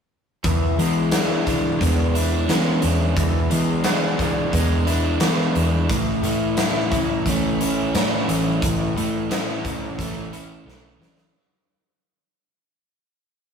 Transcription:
0.44 picked electric bass E2, overdriven electric guitar E2 E3, twelve-string acoustic guitar B3, french horn E4, kick, closed hi-hat
0.78 picked electric bass E3, overdriven electric guitar G#3 B3, closed hi-hat
1.11 overdriven electric guitar D4 G#4, snare, closed hi-hat
1.45 overdriven electric guitar E3 D4, kick, closed hi-hat
1.79 picked electric bass E2, overdriven electric guitar G#3 B3, french horn D4, kick, closed hi-hat
2.14 twelve-string acoustic guitar B3, overdriven electric guitar D4 E4, closed hi-hat
2.47 picked electric bass E3, overdriven electric guitar G#3 B3, french horn C#4, snare, closed hi-hat
2.82 picked electric bass E2, overdriven electric guitar E3 D4, twelve-string acoustic guitar G#4, closed hi-hat
3.15 overdriven electric guitar E2 E3, picked electric bass E2, french horn B3, twelve-string acoustic guitar B3, kick, closed hi-hat
3.50 picked electric bass E3, overdriven electric guitar G#3 B3, french horn G#3, closed hi-hat
3.84 overdriven electric guitar D4 G#4, snare, closed hi-hat
4.17 overdriven electric guitar E3 D4, kick, closed hi-hat
4.52 picked electric bass E2, overdriven electric guitar G#3 B3, kick, closed hi-hat
4.85 twelve-string acoustic guitar B3, overdriven electric guitar D4 E4, closed hi-hat
5.20 picked electric bass E3, overdriven electric guitar G#3 B3, snare, closed hi-hat
5.55 picked electric bass E2, overdriven electric guitar E3 D4, twelve-string acoustic guitar G#4, closed hi-hat
5.89 picked electric bass A1, overdriven electric guitar A2, twelve-string acoustic guitar E3, french horn E4, kick, closed hi-hat
6.23 picked electric bass A2, overdriven electric guitar A3, closed hi-hat
6.57 overdriven electric guitar C#4 E4, twelve-string acoustic guitar A4, snare, closed hi-hat
6.92 overdriven electric guitar E3 C#4, kick, closed hi-hat
7.26 picked electric bass A1, overdriven electric guitar A3, french horn C#4, kick, closed hi-hat
7.61 twelve-string acoustic guitar E3, overdriven electric guitar C#4 E4, closed hi-hat
7.94 picked electric bass A2, overdriven electric guitar A3, snare, closed hi-hat
8.28 picked electric bass A1, overdriven electric guitar E3 C#4, twelve-string acoustic guitar A4, closed hi-hat
8.62 picked electric bass A1, overdriven electric guitar A2, twelve-string acoustic guitar E3, french horn E4, kick, closed hi-hat
8.96 picked electric bass A2, overdriven electric guitar A3, closed hi-hat
9.29 overdriven electric guitar C#4 E4, twelve-string acoustic guitar A4, snare, closed hi-hat
9.65 overdriven electric guitar E3 C#4, kick, closed hi-hat
9.98 picked electric bass A1, overdriven electric guitar A3, kick, closed hi-hat
10.33 twelve-string acoustic guitar E3, overdriven electric guitar C#4 E4, closed hi-hat
10.65 picked electric bass B1, overdriven electric guitar A3, snare
10.99 picked electric bass A1, overdriven electric guitar E3 C#4, twelve-string acoustic guitar A4, snare
11.18 snare

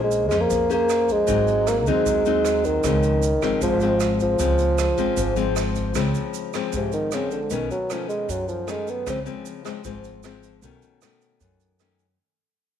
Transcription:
Already playing: upright bass A#1, nylon-string guitar A#3 C#4 G#4 C5
0.04 bassoon G#3
0.11 closed hi-hat, shaker
0.28 upright bass F2, bassoon G#3, nylon-string guitar C#4 G#4 C5, kick, cross-stick, closed hi-hat, shaker
0.41 bassoon A#3
0.50 upright bass F2, nylon-string guitar F3, kick, closed hi-hat, shaker
0.70 bassoon A#3, nylon-string guitar C#4 G#4 C5, closed hi-hat, shaker
0.89 cross-stick, closed hi-hat, shaker
1.09 bassoon G#3, kick, closed hi-hat, shaker
1.27 upright bass G#1, nylon-string guitar G#2 F#3 C4 D#4, kick, closed hi-hat, shaker
1.47 closed hi-hat, shaker
1.67 bassoon A#3, cross-stick, closed hi-hat, shaker
1.79 bassoon A#3
1.86 upright bass D#2, nylon-string guitar F#3 C4 D#4, bassoon G#3, kick, closed hi-hat, shaker
2.06 upright bass D#2, nylon-string guitar D#3, kick, closed hi-hat, shaker
2.25 nylon-string guitar F#3 C4 D#4, closed hi-hat, shaker
2.45 cross-stick, closed hi-hat, shaker
2.64 bassoon D#3, kick, closed hi-hat, shaker
2.84 upright bass C#2, nylon-string guitar C#3 F3 G#3 C4, kick, cross-stick, closed hi-hat, shaker
3.03 closed hi-hat, shaker
3.22 closed hi-hat, shaker
3.42 upright bass G#1, nylon-string guitar F3 G#3 C4, kick, cross-stick, closed hi-hat, shaker
3.62 upright bass G#1, nylon-string guitar G#2, bassoon F3, kick, closed hi-hat, shaker
3.80 nylon-string guitar F3 G#3 C4, closed hi-hat, shaker
4.00 cross-stick, closed hi-hat, shaker
4.20 bassoon F3, kick, closed hi-hat, shaker
4.39 upright bass C#2, nylon-string guitar C#3 F3 G#3 C4, kick, closed hi-hat, shaker
4.58 closed hi-hat, shaker
4.78 cross-stick, closed hi-hat, shaker
4.98 upright bass G#1, nylon-string guitar F3 G#3 C4, kick, closed hi-hat, shaker
5.17 upright bass G#1, nylon-string guitar G#2, kick, closed hi-hat, shaker
5.36 nylon-string guitar F3 G#3 C4, closed hi-hat, shaker
5.56 cross-stick, closed hi-hat, shaker
5.75 kick, closed hi-hat, shaker
5.94 upright bass C#2, nylon-string guitar C#3 F3 G#3 C4, kick, cross-stick, closed hi-hat, shaker
6.15 closed hi-hat, shaker
6.34 closed hi-hat, shaker
6.53 nylon-string guitar F3 G#3 C4, cross-stick, closed hi-hat, shaker
6.73 upright bass G#1, nylon-string guitar G#2, kick, closed hi-hat, shaker
6.77 bassoon C3
6.92 bassoon D#3, closed hi-hat, shaker
7.12 bassoon C#3, nylon-string guitar F3 G#3 C4, cross-stick, closed hi-hat, shaker
7.31 bassoon D3, closed hi-hat, shaker
7.50 upright bass B1, nylon-string guitar B2 D#3 A3 C#4, bassoon D#3, kick, closed hi-hat, shaker
7.71 bassoon F#3, closed hi-hat, shaker
7.90 nylon-string guitar D#3 A3 C#4, bassoon F3, cross-stick, closed hi-hat, shaker
8.09 bassoon G#3, closed hi-hat, shaker
8.29 upright bass F#2, nylon-string guitar F#2, bassoon F#3, kick, closed hi-hat, shaker
8.48 bassoon F3, closed hi-hat, shaker
8.67 nylon-string guitar D#3 A3 C#4, bassoon G#3, cross-stick, closed hi-hat, shaker
8.87 bassoon B3, closed hi-hat, shaker
9.06 upright bass C#2, nylon-string guitar C#3 F3 G#3 C4, bassoon C4, kick, cross-stick, closed hi-hat, shaker
9.25 nylon-string guitar F3 G#3 C4, closed hi-hat, shaker
9.46 closed hi-hat, shaker
9.65 nylon-string guitar F3 G#3 C4, cross-stick, closed hi-hat, shaker
9.84 upright bass G#1, nylon-string guitar G#2 F3 G#3 C4, kick, closed hi-hat, shaker
10.04 closed hi-hat, shaker
10.23 nylon-string guitar F3 G#3 C4, cross-stick, closed hi-hat, shaker
10.43 closed hi-hat, shaker
10.62 upright bass B1, nylon-string guitar B2 D#3 A3 C#4, kick, closed hi-hat, shaker
10.82 closed hi-hat, shaker
11.01 nylon-string guitar D#3 A3 C#4, cross-stick, closed hi-hat, shaker
11.21 closed hi-hat, shaker
11.40 upright bass F#2, nylon-string guitar F#2, kick, closed hi-hat, shaker
11.60 closed hi-hat, shaker
11.79 nylon-string guitar D#3 A3 C#4, cross-stick, closed hi-hat, shaker
11.99 closed hi-hat, shaker

